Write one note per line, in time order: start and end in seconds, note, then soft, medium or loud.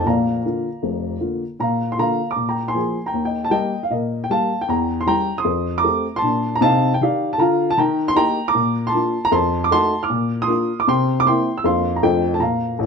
0.05 0.38 A#1 medium
0.05 0.38 A#2 medium
0.05 1.42 D5 soft
0.05 1.41 F5 medium
0.05 1.45 A#5 medium
0.46 0.66 D3 soft
0.46 0.66 A#3 soft
0.46 0.67 F4 medium
0.83 1.15 F1 soft
0.83 1.15 F2 soft
1.20 1.42 D3 soft
1.20 1.42 A#3 soft
1.20 1.42 F4 soft
1.60 1.92 A#2 medium
1.60 1.90 F5 medium
1.60 1.91 A#5 medium
1.92 1.99 C6 medium
1.99 2.20 D3 medium
1.99 2.20 A#3 soft
1.99 2.20 F4 soft
1.99 2.28 F5 medium
1.99 2.30 A#5 medium
2.31 2.47 A#5 soft
2.31 2.49 D6 medium
2.36 2.69 A#2 medium
2.49 2.67 G5 medium
2.49 2.68 A#5 medium
2.68 3.05 G#5 medium
2.68 3.07 C6 medium
2.75 2.96 F3 soft
2.75 2.96 A#3 soft
2.75 2.97 G#4 medium
3.06 3.24 G5 medium
3.06 3.26 A#5 medium
3.13 3.46 D#2 medium
3.25 3.44 D#5 medium
3.25 3.45 G5 medium
3.44 3.52 A5 medium
3.50 3.72 G3 soft
3.50 3.73 A#3 medium
3.50 3.73 G4 medium
3.50 3.81 D#5 medium
3.50 3.83 G5 medium
3.83 3.91 F5 medium
3.90 4.23 A#2 medium
3.90 4.21 A#4 medium
3.90 4.22 D#5 medium
4.24 4.30 G5 medium
4.30 4.51 G3 soft
4.30 4.51 A#3 soft
4.30 4.52 G4 soft
4.30 4.60 F5 medium
4.30 4.61 A5 medium
4.61 4.69 G5 medium
4.68 5.01 E2 medium
4.68 4.98 G5 medium
4.68 5.00 A#5 medium
5.01 5.08 C6 medium
5.07 5.28 G3 soft
5.07 5.28 C#4 soft
5.07 5.28 G4 medium
5.07 5.37 G5 medium
5.07 5.38 A#5 loud
5.38 5.75 C6 medium
5.38 5.77 D#6 medium
5.45 5.78 F2 medium
5.78 6.14 A#5 medium
5.78 6.16 D6 medium
5.84 6.05 A3 soft
5.84 6.06 C4 soft
5.84 6.05 G4 soft
6.16 6.53 A5 medium
6.16 6.54 C6 medium
6.22 6.53 A#2 medium
6.22 6.54 D4 medium
6.55 6.62 A#5 medium
6.61 6.92 C3 medium
6.61 6.93 D#4 medium
6.61 6.91 F5 medium
6.61 6.93 A5 loud
6.94 7.01 G5 medium
7.01 7.32 D#3 medium
7.01 7.33 G4 medium
7.01 7.31 D5 medium
7.01 7.32 F5 medium
7.33 7.40 A5 medium
7.38 7.69 D3 medium
7.38 7.71 F4 medium
7.38 7.68 F5 medium
7.38 7.70 A#5 medium
7.70 7.78 A5 loud
7.78 8.10 D#3 medium
7.78 8.07 G5 medium
7.78 8.09 A#5 medium
8.08 8.16 C6 loud
8.16 8.37 A#3 medium
8.16 8.37 D#4 medium
8.16 8.38 G4 medium
8.16 8.46 G5 medium
8.16 8.47 A#5 loud
8.48 8.84 A#5 medium
8.48 8.86 D6 loud
8.55 8.87 A#2 medium
8.87 9.23 A5 medium
8.87 9.25 C6 medium
8.94 9.15 A#3 soft
8.94 9.15 D4 medium
8.94 9.16 F4 medium
9.25 9.32 A#5 loud
9.32 9.64 F2 medium
9.32 9.62 A5 medium
9.32 9.63 C6 medium
9.64 9.71 D6 medium
9.71 9.92 A3 medium
9.71 9.92 D#4 medium
9.71 9.93 F#4 medium
9.71 10.01 A5 medium
9.71 10.02 C6 loud
10.03 10.38 D6 medium
10.03 10.40 F6 medium
10.10 10.42 A#2 medium
10.42 10.77 C6 medium
10.42 10.79 D#6 loud
10.47 10.69 A#3 medium
10.47 10.69 D4 soft
10.47 10.69 F4 medium
10.80 10.86 D6 medium
10.88 11.19 C3 medium
10.88 11.16 G5 medium
10.88 11.18 C6 loud
11.20 11.26 D6 loud
11.26 11.47 A#3 soft
11.26 11.47 C4 soft
11.26 11.47 E4 medium
11.26 11.55 G5 medium
11.26 11.57 C6 medium
11.58 11.64 E6 medium
11.64 11.96 F2 medium
11.64 11.85 A#3 soft
11.64 11.85 D4 soft
11.64 11.86 F4 soft
11.64 11.93 F5 medium
11.64 11.95 C6 medium
11.96 12.03 A#5 medium
12.03 12.35 F2 medium
12.03 12.23 A3 soft
12.03 12.24 D4 soft
12.03 12.24 F4 soft
12.03 12.32 D#5 medium
12.03 12.33 G5 medium
12.34 12.41 A5 medium
12.40 12.72 A#2 medium
12.40 12.86 F5 medium
12.40 12.86 A#5 medium
12.79 12.86 A1 medium
12.79 12.86 A2 medium